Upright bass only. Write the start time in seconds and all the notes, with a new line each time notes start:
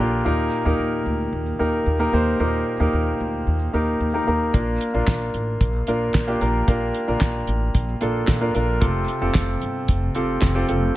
0.00 A#1
0.26 D#2
0.65 D#2
0.79 D#2
1.06 D2
1.33 D#2
1.60 D#2
1.86 D#2
2.13 D#2
2.40 D#2
2.80 D#2
2.93 D#2
3.20 D2
3.47 D#2
3.74 D#2
4.00 D#2
4.28 D#2
4.54 A#1
4.94 A#1
5.07 A#1
5.34 A1
5.61 A#1
5.87 A#1
6.15 A#1
6.41 A#1
6.68 A#1
7.08 A#1
7.21 A#1
7.48 A1
7.75 A#1
8.02 A#1
8.28 A#1
8.55 A#1
8.82 F1
9.22 F1
9.35 F1
9.62 G1
9.89 F1
10.16 F1
10.42 F1
10.69 F1